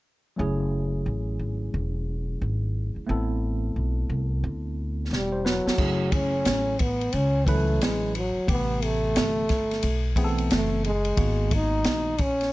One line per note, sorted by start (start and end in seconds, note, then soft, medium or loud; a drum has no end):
0.36 1.03 F#1 medium
0.36 3.03 F#3 medium
0.36 3.04 A3 medium
0.36 3.04 C#4 medium
0.36 3.05 E4 medium
0.41 3.05 G#4 medium
1.06 1.38 A1 medium
1.39 1.72 G#1 medium
1.74 2.38 E1 medium
2.42 2.94 G#1 medium
2.96 muted upright bass stroke soft
3.07 3.73 A1 loud
3.07 5.73 A3 medium
3.07 5.74 B3 medium
3.07 5.74 C4 medium
3.07 5.75 E4 medium
3.11 5.08 A4 medium
3.76 4.08 B1 medium
4.10 4.42 C2 medium
4.44 5.08 D2 medium
5.11 5.63 E1 medium
5.11 5.48 G3 medium
5.11 snare medium
5.32 5.44 C5 medium
5.45 6.14 F#3 medium
5.45 5.65 B4 medium
5.45 snare medium
5.66 5.98 A4 medium
5.66 muted upright bass stroke soft
5.66 snare medium
5.78 6.42 F#1 medium
5.78 6.74 F#3 medium
5.78 6.74 A3 medium
5.78 6.75 C#4 medium
5.78 6.75 E4 medium
5.78 6.75 G#4 medium
5.78 kick medium
5.78 crash medium
6.12 6.83 C#4 medium
6.12 kick medium
6.12 ride medium
6.45 7.10 A1 medium
6.45 snare loud
6.45 hi-hat pedal soft
6.45 ride medium
6.79 7.16 B3 medium
6.79 kick medium
6.79 ride medium
7.01 ride soft
7.13 7.80 C#2 medium
7.13 7.50 C#4 medium
7.13 ride medium
7.46 8.19 E3 medium
7.46 8.18 F#3 medium
7.46 7.84 A3 medium
7.46 8.19 C#4 medium
7.46 8.19 E4 medium
7.46 8.19 B4 medium
7.46 kick medium
7.46 ride medium
7.80 8.33 A1 medium
7.80 8.15 G#3 medium
7.80 snare loud
7.80 hi-hat pedal soft
7.80 ride medium
8.15 8.47 F#3 medium
8.15 ride medium
8.36 muted upright bass stroke soft
8.47 9.12 A1 loud
8.47 9.44 C3 medium
8.47 9.44 E3 medium
8.47 9.44 A3 medium
8.47 9.44 B3 medium
8.47 8.85 B3 medium
8.47 9.45 G4 medium
8.47 kick medium
8.47 ride medium
8.82 10.26 A3 medium
8.82 ride medium
9.16 9.80 G1 medium
9.16 snare loud
9.16 hi-hat pedal soft
9.16 ride medium
9.49 kick medium
9.49 snare soft
9.49 ride medium
9.71 snare soft
9.71 ride soft
9.83 10.47 B1 medium
9.83 ride medium
10.16 10.88 E3 medium
10.16 10.88 A3 medium
10.16 10.89 B3 medium
10.16 10.89 C4 medium
10.16 10.25 G#4 medium
10.16 kick medium
10.16 ride medium
10.24 10.92 A4 medium
10.38 ride soft
10.51 11.15 F#1 medium
10.51 10.83 A3 medium
10.51 snare loud
10.51 hi-hat pedal soft
10.51 ride medium
10.84 11.56 G#3 medium
10.84 ride soft
11.05 ride soft
11.16 11.82 G#1 medium
11.16 12.13 D#3 medium
11.16 12.13 G#3 medium
11.16 12.14 A#3 medium
11.16 12.14 B3 medium
11.16 12.14 F#4 medium
11.16 kick medium
11.16 ride medium
11.51 12.23 D#4 medium
11.51 kick medium
11.51 ride medium
11.84 12.49 A#1 medium
11.84 snare loud
11.84 hi-hat pedal soft
11.84 ride medium
12.18 12.53 C#4 medium
12.18 kick medium
12.18 ride medium
12.41 snare soft
12.41 ride soft